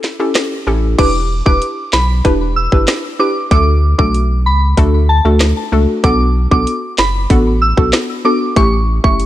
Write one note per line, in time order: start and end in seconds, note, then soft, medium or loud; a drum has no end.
0.04 snare medium
0.20 0.63 C#4 medium
0.20 0.63 E4 medium
0.20 0.63 G4 medium
0.20 0.63 A4 medium
0.35 cross-stick loud
0.35 cross-stick medium
0.35 snare loud
0.35 closed hi-hat medium
0.67 0.95 A1 medium
0.67 0.96 C#4 medium
0.67 0.96 E4 medium
0.67 0.96 G4 medium
0.67 0.96 A4 medium
0.98 1.42 E1 loud
0.98 1.19 D4 medium
0.98 1.19 E4 medium
0.98 1.19 G4 medium
0.98 1.19 B4 loud
0.98 1.12 D6 medium
0.98 kick loud
0.98 closed hi-hat medium
0.98 crash medium
1.46 1.60 E1 medium
1.46 1.67 D4 medium
1.46 1.67 E4 medium
1.46 1.67 G4 medium
1.46 1.67 B4 medium
1.46 1.60 D6 medium
1.46 kick medium
1.62 closed hi-hat medium
1.93 2.22 B1 loud
1.93 2.07 B5 medium
1.93 cross-stick medium
1.93 snare loud
2.25 2.68 E1 loud
2.25 2.45 D4 medium
2.25 2.46 E4 medium
2.25 2.46 G4 medium
2.25 2.46 B4 loud
2.25 kick medium
2.25 closed hi-hat medium
2.56 2.70 E6 medium
2.72 2.86 G1 medium
2.72 3.16 D4 medium
2.72 3.16 E4 medium
2.72 3.16 G4 medium
2.72 3.16 B4 medium
2.72 kick loud
2.88 cross-stick loud
2.88 snare loud
2.88 closed hi-hat medium
3.19 3.49 D4 medium
3.19 3.49 E4 medium
3.19 3.49 G4 medium
3.19 3.49 B4 medium
3.19 3.33 D6 medium
3.51 3.95 D2 loud
3.51 3.72 A3 medium
3.51 3.72 D4 medium
3.51 3.72 F#4 medium
3.51 3.72 A4 loud
3.51 3.65 D6 loud
3.51 kick loud
3.51 closed hi-hat medium
3.98 4.48 B1 medium
3.98 4.19 A3 medium
3.98 4.19 D4 medium
3.98 4.19 F#4 medium
3.98 4.19 A4 medium
3.98 4.12 D6 medium
3.98 kick loud
4.14 closed hi-hat medium
4.46 4.74 C#2 loud
4.46 4.60 B5 medium
4.77 5.21 D2 loud
4.77 4.98 A3 loud
4.77 4.98 D4 medium
4.77 4.98 F#4 medium
4.77 4.98 A4 loud
4.77 kick medium
4.77 closed hi-hat medium
5.09 5.23 A5 medium
5.25 5.53 D2 medium
5.25 5.68 A3 medium
5.25 5.69 D4 medium
5.25 5.69 F#4 medium
5.25 5.69 A4 medium
5.40 cross-stick loud
5.40 cross-stick medium
5.40 snare loud
5.40 closed hi-hat medium
5.72 5.87 C#2 loud
5.72 6.01 A3 medium
5.72 6.01 D4 medium
5.72 6.01 F#4 medium
5.72 6.02 A4 medium
6.04 6.47 B1 loud
6.04 6.24 B3 medium
6.04 6.24 D4 medium
6.04 6.25 F#4 medium
6.04 6.25 A4 loud
6.04 6.17 D6 medium
6.04 kick loud
6.04 closed hi-hat medium
6.51 6.66 B1 medium
6.51 6.72 B3 medium
6.51 6.72 D4 medium
6.51 6.72 F#4 medium
6.51 6.72 A4 medium
6.51 6.65 D6 medium
6.51 kick loud
6.67 closed hi-hat medium
6.98 7.27 F#1 medium
6.98 7.12 B5 medium
6.98 cross-stick medium
6.98 snare loud
7.30 7.74 A1 loud
7.30 7.51 B3 loud
7.30 7.51 D4 medium
7.30 7.51 F#4 medium
7.30 7.51 A4 loud
7.30 kick medium
7.30 closed hi-hat medium
7.62 7.75 E6 medium
7.77 7.92 B1 medium
7.77 8.21 B3 medium
7.77 8.21 D4 medium
7.77 8.21 F#4 medium
7.77 8.21 A4 medium
7.77 kick medium
7.93 cross-stick loud
7.93 snare loud
7.93 closed hi-hat medium
8.25 8.54 B3 medium
8.25 8.54 D4 medium
8.25 8.54 F#4 medium
8.25 8.54 A4 medium
8.25 8.39 D6 medium
8.56 9.00 A1 loud
8.56 8.77 A3 medium
8.56 8.77 C#4 medium
8.56 8.77 E4 medium
8.56 8.77 G4 loud
8.56 8.70 C#6 loud
8.56 kick loud
8.56 closed hi-hat medium
9.04 9.26 F#1 medium
9.04 9.24 A3 medium
9.04 9.25 C#4 medium
9.04 9.25 E4 medium
9.04 9.25 G4 medium
9.04 9.17 C#6 medium
9.04 kick loud
9.20 closed hi-hat medium